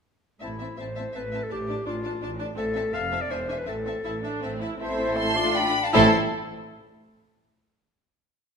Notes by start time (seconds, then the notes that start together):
0.41 A1 A2 C4 E4 E5 A5
0.59 C4 E5 A5
0.77 A1 A2 C4 C5 E5 A5
0.95 C4 E5 A5
1.14 A1 A2 C4 B4 E5 A5
1.32 C4 E5 A5
1.44 A4
1.50 A1 A2 D4 G4 D5 A5
1.67 D4 D5 A5
1.86 A1 A2 D4 F4 D5 A5
2.04 D4 D5 A5
2.21 A1 A2 D4 D5 A5
2.39 D4 D5 A5
2.55 A1 A2 C4 A4 E5 A5
2.74 C4 E5 A5
2.92 F1 F2 C4 E5 F5 A5
3.11 C4 E5 A5
3.21 D5
3.29 E1 E2 D4 C5 E5 G#5
3.48 D4 E5 G#5
3.58 B4
3.66 A1 A2 C4 A4 E5 A5
3.85 C4 E5 A5
4.03 A1 A2 E4 E5 A5
4.22 D4 E5 A5
4.42 A1 A2 C4 E5 A5
4.60 E4 E5 A5
4.79 A1 A2 A3 C4 E4 A4 C5 E5
5.17 A5 C6
5.34 D4 F4 D5
5.55 G5 B5
5.84 F5 A5
5.92 A1 A2 A3 C4 E4 A4 E5 A5 C6